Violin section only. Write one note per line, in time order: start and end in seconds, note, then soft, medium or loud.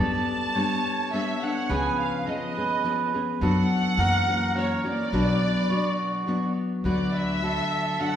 0.00 1.09 A5 loud
1.13 1.43 E5 medium
1.42 1.70 F#5 medium
1.70 2.00 G#5 medium
1.99 2.24 F5 medium
2.26 3.13 D#5 medium
3.41 4.51 F#5 loud
4.58 4.87 C#5 medium
4.87 6.54 D5 loud
6.85 7.13 D5 medium
7.15 7.99 E5 medium
8.00 8.16 F#5 medium